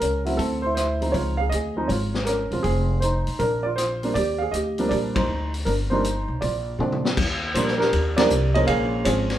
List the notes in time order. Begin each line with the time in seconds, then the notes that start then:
0.00 C#2 C#4 A#4, closed hi-hat
0.25 F#3 A3 C4 E4, open hi-hat
0.37 D2 C4 A4, kick, open hi-hat
0.62 C5
0.66 E4
0.75 C5, cross-stick, closed hi-hat
0.79 E4
1.01 F3 G#3 C4 D#4, open hi-hat
1.12 C#2 C#5, kick, open hi-hat
1.16 F4
1.37 G#4 F5
1.50 D2 D#5, closed hi-hat
1.54 G#4
1.77 F3 G#3 C4 D#4
1.88 G#1 F4 C#5, kick, open hi-hat
2.14 snare
2.25 C#4 A#4, cross-stick, closed hi-hat
2.51 E1 F3 G#3 C4 F4, open hi-hat
2.63 F1 C4 G#4, kick, open hi-hat
3.00 D#4 C5, closed hi-hat
3.27 B1, open hi-hat
3.39 A#1 D4 A#4, kick, open hi-hat
3.63 F4 D5
3.76 F4 C5, cross-stick, closed hi-hat
4.03 F3 G3 A#3 D4, open hi-hat
4.14 D#2 G4 D5, kick, open hi-hat
4.38 G#4 F5
4.52 D2 G4 D#5, closed hi-hat
4.78 F3 G3 A#3 D4, open hi-hat
4.89 A#1 G4 D5, kick, open hi-hat
5.15 D#4 C5, kick, ride
5.28 D2
5.54 open hi-hat
5.65 G1 D4 A#4, kick, open hi-hat
5.90 F3 G3 A#3 D4 D#4 C5
6.04 closed hi-hat
6.28 B1
6.41 A#1 F4 D5, kick, open hi-hat
6.78 A#2 F3 G#3 C4 D4, mid tom
6.92 mid tom
7.05 snare
7.17 D#2, kick, crash
7.54 A#1 F3 G3 A#3 D4 C5, kick, hi-hat pedal, ride
7.68 snare
7.78 D4 G4 A#4, snare
7.93 D#2, kick, ride
8.17 F3 G3 A#3 D4 G4 A#4 D5, snare, ride
8.29 C2, hi-hat pedal
8.54 F3 G#3 A#3 C#4 D#5, ride
8.67 A#1 G#4 C#5 F5, kick, ride
9.05 G#1 F3 G#3 C4 C#4 F4 G#4 C#5, kick, hi-hat pedal, ride
9.30 snare, ride